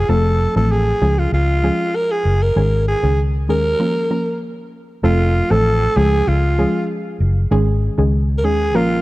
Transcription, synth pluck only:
0.09 0.52 F3 medium
0.09 0.52 A3 medium
0.09 0.52 C4 medium
0.09 0.52 A4 loud
0.56 0.70 F3 medium
0.56 0.70 A3 medium
0.56 0.70 C4 medium
0.56 0.70 A4 medium
1.01 1.17 F3 medium
1.01 1.17 G#3 medium
1.01 1.17 C#4 medium
1.01 1.17 G#4 medium
1.63 1.79 F3 medium
1.63 1.79 G#3 medium
1.63 1.79 C#4 medium
1.63 1.79 G#4 medium
2.56 2.99 D#3 medium
2.56 2.99 G#3 medium
2.56 3.00 C#4 medium
2.56 3.00 G#4 loud
3.03 3.17 D#3 medium
3.03 3.17 G#3 medium
3.03 3.18 C#4 medium
3.03 3.18 G#4 medium
3.49 3.64 D#3 medium
3.49 3.64 G#3 medium
3.49 3.64 C#4 medium
3.49 3.65 G#4 medium
3.79 4.08 F3 medium
3.79 4.08 A#3 medium
3.79 4.08 C#4 medium
3.79 4.09 A#4 loud
4.11 4.26 F3 medium
4.11 4.26 A#3 medium
4.11 4.26 C#4 medium
4.11 4.26 A#4 medium
5.03 5.47 F3 medium
5.03 5.47 A3 medium
5.03 5.47 C4 medium
5.03 5.47 A4 loud
5.50 5.65 F3 medium
5.50 5.65 A3 medium
5.50 5.65 C4 medium
5.50 5.65 A4 medium
5.96 6.12 F3 medium
5.96 6.12 G#3 medium
5.96 6.12 C#4 medium
5.96 6.12 G#4 medium
6.58 6.74 F3 medium
6.58 6.74 G#3 medium
6.58 6.74 C#4 medium
6.58 6.74 G#4 medium
7.51 7.94 D#3 loud
7.51 7.94 G#3 medium
7.51 7.94 C#4 medium
7.51 7.94 G#4 loud
7.98 8.12 D#3 medium
7.98 8.12 G#3 medium
7.98 8.12 C#4 medium
7.98 8.12 G#4 medium
8.44 8.59 D#3 medium
8.44 8.59 G#3 medium
8.44 8.59 C#4 medium
8.44 8.59 G#4 medium
8.74 9.02 F3 loud
8.74 9.02 A#3 medium
8.74 9.02 C#4 medium
8.74 9.02 A#4 loud

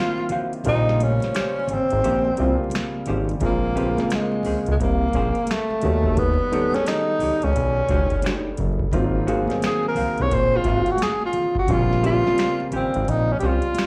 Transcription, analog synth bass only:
0.67 1.20 A#1 loud
1.71 1.79 G#1 medium
1.92 2.02 G#1 medium
2.05 2.31 A#1 medium
2.40 2.56 C2 medium
3.09 3.35 G#1 medium
3.42 3.96 A#1 loud
4.47 4.55 C#2 soft
4.68 4.77 C#2 medium
4.81 5.07 C2 medium
5.15 5.31 A#1 medium
5.84 6.38 D#2 medium
7.22 7.30 C#2 soft
7.44 7.53 C#2 medium
7.56 7.83 B1 medium
7.90 8.07 C#2 loud
8.60 8.86 F#1 medium
8.94 9.47 G#1 loud
9.98 10.06 C2 soft
10.20 10.29 C2 medium
10.32 10.59 A#1 medium
10.66 10.82 G#1 medium
11.69 12.23 A#1 loud
12.74 12.82 G#1 medium
12.96 13.05 G#1 medium
13.08 13.35 A#1 loud
13.43 13.59 C2 medium

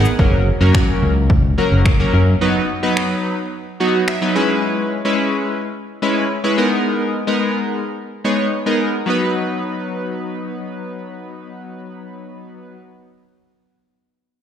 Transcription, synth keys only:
0.19 0.41 F#3 medium
0.19 0.41 A#3 medium
0.19 0.41 C#4 medium
0.19 0.41 A#4 medium
0.60 1.13 F#3 medium
0.60 1.13 A#3 medium
0.60 1.13 C#4 medium
0.60 1.13 A#4 medium
1.58 1.80 F#3 medium
1.58 1.80 A#3 medium
1.58 1.80 C#4 medium
1.58 1.80 A#4 medium
1.99 2.22 F#3 medium
1.99 2.22 A#3 medium
1.99 2.22 C#4 medium
1.99 2.22 A#4 medium
2.41 2.63 F#3 medium
2.41 2.63 B3 medium
2.41 2.64 D#4 medium
2.41 2.64 B4 medium
2.83 3.35 F#3 medium
2.83 3.35 B3 medium
2.83 3.35 D#4 medium
2.83 3.35 B4 medium
3.80 4.02 F#3 medium
3.80 4.02 B3 medium
3.80 4.03 D#4 medium
3.80 4.03 F#4 medium
4.08 4.60 E5 medium
4.21 4.35 F#3 medium
4.21 4.36 B3 medium
4.21 4.36 D#4 medium
4.21 4.35 B4 medium
4.35 4.91 G#3 medium
4.35 4.91 C#4 medium
4.35 4.91 E4 medium
4.35 4.91 B4 loud
5.05 5.57 G#3 medium
5.05 5.57 C#4 medium
5.05 5.57 E4 medium
5.05 5.57 B4 medium
6.02 6.25 G#3 medium
6.02 6.25 C#4 medium
6.02 6.25 E4 medium
6.02 6.25 B4 medium
6.44 6.56 G#3 medium
6.44 6.58 C#4 medium
6.44 6.58 E4 medium
6.44 6.58 B4 medium
6.58 7.13 G#3 medium
6.58 7.13 B3 medium
6.58 7.13 D#4 medium
6.58 7.14 A#4 medium
7.27 7.79 G#3 medium
7.27 7.79 B3 medium
7.27 7.79 D#4 medium
7.27 7.80 A#4 medium
8.24 8.47 G#3 medium
8.24 8.47 B3 medium
8.24 8.47 D#4 medium
8.24 8.47 C#5 medium
8.66 8.88 G#3 medium
8.66 8.88 B3 medium
8.66 8.89 D#4 medium
8.66 8.89 A#4 medium
9.06 12.75 F#3 medium
9.06 12.76 B3 medium
9.06 12.76 D#4 medium
9.10 12.77 B4 medium

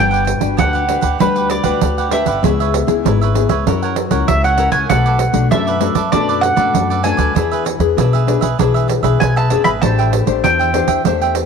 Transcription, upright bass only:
0.00 0.36 G1 medium
0.41 0.55 G1 medium
0.59 0.98 D2 medium
1.03 1.17 D2 medium
1.20 1.59 D2 medium
1.65 1.78 D2 medium
1.81 2.21 D2 medium
2.26 2.40 G1 medium
2.43 2.82 C#2 loud
2.87 3.01 C#2 medium
3.05 3.44 G#1 medium
3.49 3.63 C#2 medium
3.66 4.06 F#2 medium
4.11 4.25 C#2 medium
4.29 4.68 C#2 medium
4.73 4.86 C#2 medium
4.90 5.29 B1 loud
5.34 5.48 B1 medium
5.51 5.90 F#2 medium
5.95 6.09 F#2 medium
6.13 6.52 F#2 medium
6.56 6.71 F#2 medium
6.74 7.13 F#2 medium
7.18 7.32 D2 medium
7.35 7.75 E2 medium
7.79 7.93 E2 medium
7.97 8.36 B1 medium
8.41 8.55 B1 medium
8.59 8.98 B1 medium
9.03 9.17 B1 medium
9.21 9.47 B1 medium
9.51 9.64 F#1 medium
9.64 9.79 G#1 medium
9.82 10.21 A1 medium
10.26 10.40 A1 medium
10.43 10.83 E2 medium
10.87 11.02 E2 medium
11.04 11.44 E2 medium

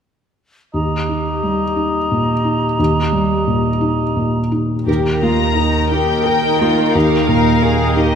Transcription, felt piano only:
0.74 2.75 D#2 soft
1.09 1.64 D#4 soft
1.43 1.98 G3 soft
1.76 2.31 D#4 soft
2.11 2.65 A#2 soft
2.44 2.99 D#4 soft
2.79 4.84 D#2 soft
3.12 3.68 G3 soft
3.47 4.03 A#2 soft
3.81 4.38 D#4 soft
4.16 4.73 A#2 soft
4.52 4.87 D#4 soft
4.87 6.90 D#2 soft
5.22 5.78 A#3 soft
5.57 6.12 A#4 soft
5.91 6.47 D#4 soft
6.26 6.81 A#4 soft
6.61 7.15 A#3 soft
6.95 8.15 D#2 soft
7.29 7.83 A#2 soft
7.63 8.15 A#4 soft
7.96 8.15 D#4 soft

